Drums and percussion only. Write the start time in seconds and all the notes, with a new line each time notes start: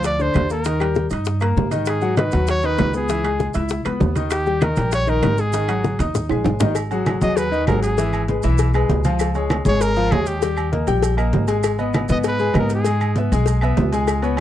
0.04 high bongo, high conga, high timbale, maracas
0.19 high bongo, high conga, maracas
0.34 high bongo, low bongo, high conga, high timbale, low timbale, claves, maracas
0.50 high bongo, high conga, maracas
0.64 high bongo, high conga, high timbale, maracas
0.80 high bongo, high conga, high timbale, claves, maracas
0.95 high bongo, high conga, low timbale, maracas
1.10 high conga, high timbale, maracas
1.25 high bongo, high conga, maracas
1.40 high bongo, high conga, high timbale, claves, maracas
1.57 high bongo, low bongo, high conga, low timbale, maracas
1.71 high bongo, high conga, high timbale, maracas
1.85 high bongo, high conga, high timbale, claves, maracas
2.01 high bongo, high conga, maracas
2.17 high bongo, high conga, high timbale, low timbale, claves, maracas
2.31 high conga, high timbale, maracas
2.47 high bongo, high conga, high timbale, maracas
2.63 high bongo, high conga, maracas
2.78 high bongo, low bongo, high conga, high timbale, low timbale, claves, maracas
2.94 high bongo, high conga, maracas
3.09 high bongo, high conga, high timbale, maracas
3.24 high bongo, high conga, high timbale, claves, maracas
3.40 high bongo, high conga, low timbale, maracas
3.54 high conga, high timbale, maracas
3.69 high bongo, high conga, maracas
3.85 high bongo, high conga, high timbale, claves, maracas
4.00 high bongo, low bongo, high conga, low timbale, maracas
4.16 high bongo, high conga, high timbale, maracas
4.30 high bongo, high conga, high timbale, claves, maracas
4.46 high bongo, high conga, maracas
4.61 high bongo, high conga, high timbale, low timbale, claves, maracas
4.76 high conga, high timbale, maracas
4.92 high bongo, high conga, high timbale, maracas
5.07 high bongo, high conga, maracas
5.23 high bongo, low bongo, high conga, high timbale, low timbale, claves, maracas
5.38 high bongo, high conga, maracas
5.53 high bongo, high conga, high timbale, maracas
5.68 high bongo, high conga, high timbale, claves, maracas
5.84 high bongo, high conga, low timbale, maracas
5.99 high conga, high timbale, maracas
6.15 high bongo, low conga, maracas
6.29 high timbale, claves, maracas
6.44 low bongo, low conga, high timbale, maracas
6.60 low bongo, low conga, low timbale, maracas
6.75 cowbell, high conga, low agogo, claves, maracas
6.91 high conga, low agogo, maracas
7.06 cowbell, high conga, low timbale, low agogo, claves, maracas
7.21 high conga, maracas
7.37 cowbell, high conga, low agogo, maracas
7.52 high conga, maracas
7.67 cowbell, high conga, low timbale, low agogo, claves, maracas
7.83 cowbell, high conga, maracas
7.98 cowbell, high conga, low agogo, maracas
8.13 high conga, low agogo, claves, maracas
8.28 cowbell, high conga, low timbale, maracas
8.43 high conga, low agogo, maracas
8.58 cowbell, high conga, low agogo, maracas
8.74 high conga, low agogo, claves, maracas
8.89 cowbell, high conga, low timbale, maracas
9.04 cowbell, high conga, low agogo, maracas
9.19 cowbell, high conga, low agogo, claves, maracas
9.35 high conga, low agogo, maracas
9.50 cowbell, high conga, low timbale, low agogo, claves, maracas
9.65 high conga, maracas
9.81 cowbell, high conga, low agogo, maracas
9.96 high conga, maracas
10.11 cowbell, high conga, low timbale, low agogo, claves, maracas
10.26 cowbell, high conga, maracas
10.42 cowbell, high conga, low agogo, maracas
10.57 high conga, low agogo, claves, maracas
10.72 cowbell, high conga, low timbale, maracas
10.87 high conga, low agogo, maracas
11.02 cowbell, high conga, low agogo, maracas
11.18 high conga, low agogo, claves, maracas
11.33 cowbell, high conga, low timbale, maracas
11.48 cowbell, low agogo, maracas
11.63 cowbell, high conga, low agogo, claves, maracas
11.78 high conga, low agogo, maracas
11.93 cowbell, high conga, low timbale, low agogo, claves, maracas
12.09 high conga, maracas
12.24 cowbell, high conga, low agogo, maracas
12.39 high conga, maracas
12.54 cowbell, high conga, low timbale, low agogo, claves, maracas
12.70 cowbell, high conga, maracas
12.85 cowbell, high conga, low agogo, maracas
13.01 high conga, low agogo, claves, maracas
13.16 cowbell, high conga, low timbale, maracas
13.32 high conga, low agogo, maracas
13.46 cowbell, high conga, low agogo, maracas
13.61 high conga, low agogo, claves, maracas
13.77 cowbell, high conga, low timbale, maracas
13.92 cowbell, low agogo, maracas
14.07 cowbell, high conga, low agogo, claves, maracas
14.22 high conga, low agogo, maracas